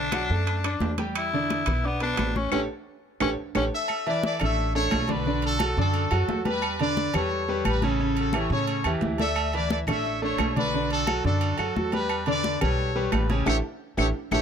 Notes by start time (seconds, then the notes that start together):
Already playing: B1 D4
0.12 F#3 F#4 F#5, high conga, high timbale, low timbale, claves
0.30 F#2 A3 A4 A5, high conga
0.46 high conga, high timbale
0.64 D4 D5 D6, high conga, high timbale, claves
0.80 E2, high conga, low timbale
0.98 G3 G4 G5, high conga, high timbale
1.16 E4, high conga, high timbale, claves
1.33 D3 D4 D5, high conga
1.50 high conga, high timbale, low timbale
1.66 B1 B3 B4 B5, high conga, low conga, high timbale, claves
1.84 B3 D4 D5 D6, high conga
2.00 B3 D4 B4 B5, high conga, high timbale
2.17 A1, high conga, high timbale, low timbale, claves
2.35 C#4 C#5 C#6, high conga
2.52 A1 C#4 G4 A4 C#5, high conga, high timbale, claves
3.20 A1 C#4 G4 A4 C#5, high conga, high timbale, claves
3.55 A1 C#4 G4 A4 C#5, high conga, high timbale, claves
3.73 A4 E5
3.88 high conga, low agogo, claves
4.07 E3 E4 B4 D5 E5, high conga, low agogo
4.23 A4 D5, high conga
4.40 A1 A3 D4 A4 C#5 E5, high conga, low conga, low agogo, claves
4.59 high conga
4.75 A3 D4 A4 C#5, high conga
4.91 B1, high conga, low timbale, low agogo, claves
5.08 D3 D4 F#4 B4 D5, high conga, low agogo
5.26 D3 D4 D5, high conga
5.42 F#4 A4, high conga, low agogo
5.59 F#3 F#4 A4, high conga, low agogo, claves
5.77 F#2 D3 D4 F#4 A4 D5, high conga
5.94 high conga, low agogo
6.11 F#2 F#3 F#4 A4, high conga, low agogo, claves
6.29 E2 F#3 F#4 A4, high conga, low timbale
6.45 G3 G4 B4, high conga, low agogo
6.62 high conga, low agogo, claves
6.79 D3 D4 B4 D5, high conga, low agogo
6.97 high conga
7.14 E2 G3 G4 A4 B4 C#5, high conga, low conga, low agogo, claves
7.31 high conga
7.48 G3 G4 B4, high conga
7.65 A1 G4 B4, high conga, low agogo, claves
7.82 C#3 C#4 E4 A4 C#5, high conga, low agogo
7.99 C#3 C#4 C#5, high conga
8.16 F#4 A4, high conga, low agogo
8.33 E3 E4 G4 A4 C#5, high conga, low agogo, claves
8.50 A2 C#3 C#4 A4 C#5, high conga
8.67 high conga, low agogo
8.84 E2 E3 E4 G4, high conga, low agogo, claves
9.01 D2 E3 E4 G4, high conga, low timbale
9.18 A3 A4 D5 E5, high conga, low agogo
9.36 high conga, low agogo, claves
9.53 E3 E4 B4 D5 E5, high conga, low agogo
9.70 A4 D5, high conga
9.87 A1 A3 D4 A4 C#5 E5, high conga, low conga, low agogo, claves
10.06 high conga
10.22 A3 D4 A4 C#5, high conga
10.38 B1, high conga, low timbale, low agogo, claves
10.56 D3 D4 F#4 B4 D5, high conga, low agogo
10.74 D3 D4 D5, high conga
10.90 F#4 A4, high conga, low agogo
11.07 F#3 F#4 A4, high conga, low agogo, claves
11.24 F#2 D3 D4 F#4 A4 D5, high conga
11.41 high conga, low agogo
11.58 F#2 F#3 F#4 A4, high conga, low agogo, claves
11.76 E2 F#3 F#4 A4, high conga
11.92 G3 G4 B4, high conga, low agogo
12.09 high conga, low agogo, claves
12.26 D3 D4 B4 D5, high conga, low agogo
12.44 high conga
12.61 B1 G3 G4 A4 B4 C#5, high conga, low conga, low agogo, claves
12.79 high conga
12.96 G3 G4 B4, high conga
13.12 A1 G4 B4, high conga, low timbale, low agogo, claves
13.30 C#3 C#4 E4 G4 C#5, high conga, low agogo
13.46 A1 E4 G4 A4 C#5, high conga, high timbale, claves
13.97 A1 E4 G4 A4 C#5, high conga, high timbale, claves
14.31 A1 E4 G4 A4 C#5, high conga, high timbale, claves